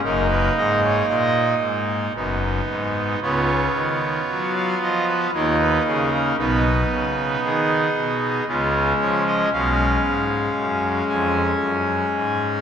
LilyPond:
<<
  \new Staff \with { instrumentName = "Pipe organ" } { \time 3/4 \key cis \mixolydian \tempo 4 = 57 << { ais'16 b'16 dis''16 cis''16 dis''8 r4. | cis''4~ cis''16 eis''16 dis''16 b'16 cis''16 b'16 gis'16 ais'16 | b'4 gis'4 eis'8 cis''16 dis''16 | eis''4. gis''4. | } \\ { <ais dis'>2 <b dis'>4 | <b eis'>2 <ais dis'>4 | <b dis'>2 <gis cis'>4 | <gis cis'>2. | } >> }
  \new Staff \with { instrumentName = "Pipe organ" } { \clef bass \time 3/4 \key cis \mixolydian <fis,, fis,>8 gis,8 ais,8 gis,8 <fis,, fis,>8 gis,8 | <cis, cis>8 dis8 fis8 eis8 <dis, dis>8 cis8 | <b,, b,>8 cis8 dis8 b,8 <cis, cis>8 eis8 | <b,, b,>8 gis,8 fis,8 eis,8 fis,8 gis,8 | }
>>